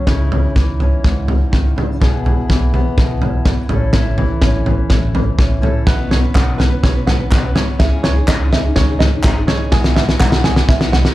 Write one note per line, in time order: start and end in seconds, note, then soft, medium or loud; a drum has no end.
0.07 0.46 C#2 medium
0.07 0.56 C#3 medium
0.07 0.80 C#4 medium
0.07 0.31 D#4 medium
0.07 2.02 E4 medium
0.07 kick loud
0.07 snare medium
0.07 floor tom medium
0.32 1.27 D#4 medium
0.32 floor tom medium
0.56 0.95 C#2 medium
0.56 2.48 E3 medium
0.56 kick medium
0.56 snare soft
0.56 floor tom medium
0.80 1.99 C#4 medium
0.80 floor tom medium
1.04 1.44 C#2 medium
1.04 1.98 G#2 medium
1.04 kick medium
1.04 snare medium
1.04 floor tom medium
1.28 1.98 D#4 soft
1.28 floor tom medium
1.51 1.72 C#2 medium
1.51 1.76 D#3 medium
1.51 kick medium
1.51 snare soft
1.51 floor tom medium
1.76 2.00 C#3 medium
1.76 floor tom medium
2.00 2.41 B1 medium
2.00 2.49 B2 medium
2.00 2.74 B3 medium
2.00 2.25 E4 medium
2.00 3.68 G#4 medium
2.00 kick loud
2.00 snare medium
2.00 floor tom medium
2.26 3.22 E4 medium
2.26 floor tom medium
2.48 2.89 B1 medium
2.48 3.45 E3 medium
2.48 kick medium
2.48 snare medium
2.48 floor tom medium
2.74 3.70 B3 medium
2.74 floor tom medium
2.98 3.37 B1 medium
2.98 3.47 B2 medium
2.98 kick loud
2.98 snare medium
2.98 floor tom medium
3.22 3.68 E4 medium
3.22 floor tom medium
3.45 3.56 B1 medium
3.45 4.17 E3 medium
3.45 kick medium
3.45 snare medium
3.45 floor tom medium
3.69 4.29 A1 medium
3.69 5.60 A2 medium
3.69 4.42 C#4 medium
3.69 3.93 E4 medium
3.69 5.61 A4 medium
3.69 floor tom medium
3.93 4.90 E4 medium
3.93 kick loud
3.93 snare medium
3.93 floor tom medium
4.18 4.65 E3 medium
4.18 floor tom medium
4.42 4.81 A1 medium
4.42 5.38 C#4 medium
4.42 kick loud
4.42 snare medium
4.42 floor tom medium
4.66 5.13 E3 medium
4.66 floor tom medium
4.90 5.30 A1 medium
4.90 5.61 E4 medium
4.90 kick loud
4.90 snare medium
4.90 floor tom medium
5.14 7.56 E3 medium
5.14 floor tom medium
5.38 5.58 A1 medium
5.38 5.61 C#4 medium
5.38 kick loud
5.38 snare medium
5.38 floor tom medium
5.61 5.84 A2 medium
5.61 5.84 C#4 medium
5.61 5.85 E4 medium
5.61 5.85 A4 medium
5.61 floor tom medium
5.87 6.26 B1 medium
5.87 6.24 B2 medium
5.87 6.24 F#3 medium
5.87 6.24 B3 medium
5.87 6.23 C#4 medium
5.87 6.57 B4 medium
5.87 6.22 B4 medium
5.87 kick loud
5.87 snare medium
5.87 floor tom medium
6.11 6.82 C#5 medium
6.11 snare medium
6.11 floor tom medium
6.23 6.34 B3 soft
6.23 6.34 C#4 soft
6.23 6.35 B4 medium
6.34 6.75 B1 medium
6.34 6.59 B2 medium
6.34 6.57 F#3 medium
6.34 6.57 B3 medium
6.34 6.58 C#4 medium
6.34 6.59 B4 medium
6.34 7.06 F#5 medium
6.34 kick loud
6.34 snare medium
6.34 clap medium
6.34 floor tom medium
6.58 6.71 F#3 medium
6.58 6.71 B3 medium
6.58 6.70 C#4 medium
6.58 7.30 B4 medium
6.58 6.68 B4 medium
6.58 snare medium
6.58 floor tom medium
6.70 6.95 B3 soft
6.70 6.94 C#4 soft
6.70 6.93 B4 medium
6.83 7.23 B1 medium
6.83 7.54 C#5 medium
6.83 kick loud
6.83 snare medium
6.83 floor tom medium
6.94 7.08 B3 soft
6.94 7.07 C#4 medium
6.94 7.07 B4 medium
7.07 7.20 F#3 medium
7.07 7.20 B3 medium
7.07 7.19 C#4 medium
7.07 7.18 B4 medium
7.07 7.79 F#5 medium
7.07 snare medium
7.07 floor tom medium
7.19 7.32 B3 soft
7.19 7.32 C#4 soft
7.19 7.32 B4 soft
7.31 7.52 B1 medium
7.31 7.44 B2 medium
7.31 7.45 F#3 medium
7.31 7.45 B3 medium
7.31 7.44 C#4 medium
7.31 7.80 B4 medium
7.31 7.43 B4 medium
7.31 kick loud
7.31 snare medium
7.31 clap medium
7.31 floor tom medium
7.44 7.56 B3 soft
7.44 7.56 C#4 medium
7.44 7.56 B4 medium
7.55 7.80 F#3 medium
7.55 7.80 B3 medium
7.55 7.79 C#4 medium
7.55 7.81 B4 medium
7.55 7.80 C#5 medium
7.55 snare medium
7.55 floor tom medium
7.79 8.19 C#2 medium
7.79 8.16 C#3 medium
7.79 8.17 E3 medium
7.79 8.17 C#4 medium
7.79 8.15 G#4 medium
7.79 8.51 E5 medium
7.79 kick loud
7.79 snare medium
7.79 floor tom medium
8.03 8.74 C#5 medium
8.03 snare medium
8.03 floor tom medium
8.16 8.27 C#4 soft
8.16 8.27 D#4 soft
8.16 8.28 G#4 medium
8.28 8.67 C#2 medium
8.28 8.52 C#3 medium
8.28 8.50 E3 medium
8.28 8.51 C#4 medium
8.28 8.52 D#4 medium
8.28 8.52 G#4 medium
8.28 8.98 D#5 medium
8.28 kick loud
8.28 snare medium
8.28 clap medium
8.28 floor tom medium
8.51 8.64 E3 medium
8.51 8.64 C#4 medium
8.51 8.65 D#4 medium
8.51 8.63 G#4 medium
8.51 9.22 E5 medium
8.51 snare medium
8.51 floor tom medium
8.65 8.90 C#4 soft
8.65 8.89 D#4 medium
8.65 8.89 G#4 medium
8.76 9.15 C#2 loud
8.76 9.46 C#5 medium
8.76 kick medium
8.76 snare medium
8.76 floor tom medium
8.90 9.01 C#4 soft
8.90 9.02 D#4 medium
8.90 9.02 G#4 medium
8.99 9.13 E3 medium
8.99 9.13 C#4 medium
8.99 9.14 D#4 medium
8.99 9.72 D#5 medium
8.99 snare medium
8.99 floor tom medium
9.03 9.12 G#4 medium
9.13 9.25 C#4 soft
9.13 9.25 D#4 soft
9.13 9.25 G#4 soft
9.23 9.44 G#1 medium
9.23 9.37 C#3 medium
9.23 9.37 E3 medium
9.23 9.37 C#4 medium
9.23 9.36 D#4 loud
9.23 9.35 G#4 loud
9.23 9.72 E5 medium
9.23 kick loud
9.23 snare medium
9.23 clap medium
9.23 floor tom medium
9.37 9.48 C#4 soft
9.37 9.49 D#4 soft
9.37 9.49 G#4 medium
9.47 9.72 E3 medium
9.47 9.73 C#4 medium
9.47 9.73 D#4 medium
9.47 9.73 G#4 medium
9.47 9.72 C#5 medium
9.47 snare medium
9.47 floor tom medium
9.72 10.12 B1 medium
9.72 10.09 B2 medium
9.72 10.09 G#3 medium
9.72 10.09 B3 medium
9.72 10.07 E4 medium
9.72 10.07 F#4 medium
9.72 10.43 G#4 medium
9.72 kick loud
9.72 snare loud
9.72 floor tom medium
9.84 snare loud
9.96 10.67 E5 medium
9.96 snare medium
9.96 floor tom medium
10.08 10.20 B3 medium
10.08 10.20 E4 medium
10.08 10.20 F#4 medium
10.08 snare medium
10.20 10.60 B1 medium
10.20 10.45 B2 medium
10.20 10.42 G#3 medium
10.20 10.43 B3 medium
10.20 10.43 E4 loud
10.20 10.44 F#4 medium
10.20 10.91 F#5 medium
10.20 kick loud
10.20 snare loud
10.20 clap medium
10.20 floor tom medium
10.32 snare loud
10.43 10.80 G#3 medium
10.43 10.81 B3 medium
10.43 10.79 E4 medium
10.43 10.78 F#4 medium
10.43 11.14 G#4 medium
10.43 snare medium
10.43 floor tom medium
10.56 snare medium
10.69 11.08 B1 loud
10.69 11.14 E5 medium
10.69 kick loud
10.69 snare medium
10.69 floor tom medium
10.79 10.92 B3 medium
10.79 10.93 E4 soft
10.79 10.92 F#4 medium
10.79 snare loud
10.92 11.05 G#3 medium
10.92 11.05 B3 medium
10.92 11.05 E4 medium
10.92 11.03 F#4 medium
10.92 11.14 F#5 medium
10.92 snare medium
10.92 floor tom medium
11.04 11.14 B3 soft
11.04 11.14 E4 soft
11.04 11.14 F#4 soft
11.04 snare loud